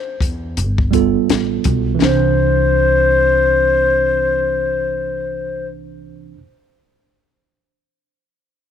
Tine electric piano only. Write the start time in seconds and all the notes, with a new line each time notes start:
0.91 G3 B3 F4 A4
1.95 E3
2.00 C4
2.04 D4
2.09 C5